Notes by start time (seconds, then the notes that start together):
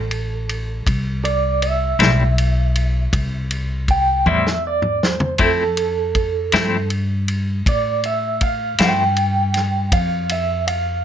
Already playing: A1 A4
0.11 ride
0.49 ride
0.86 C2, kick, ride
1.25 D5, ride
1.62 E5, ride
1.99 B1 A2 G3 C4 E4, snare, ride
2.38 ride
2.76 ride
3.13 C2, kick, ride
3.51 ride
3.88 G5, kick, ride
4.26 E2 A2 G3 C4 E4 E5, high tom
4.47 snare
4.67 D5
4.82 mid tom
5.03 C5, snare
5.20 floor tom
5.38 F2 F3 A3 C4 E4 A4, kick, ride
5.77 ride
6.15 kick, ride
6.52 G2 F3 A3 C4 E4, snare, ride
6.90 ride
7.28 ride
7.66 A2 D5, kick, ride
8.04 E5, ride
8.41 F5, kick, ride
8.78 G2 F3 A3 C4 E4 G5, snare, ride
9.17 ride
9.54 snare, ride
9.92 F2 F5, kick, ride
10.29 E5, ride
10.67 F5, ride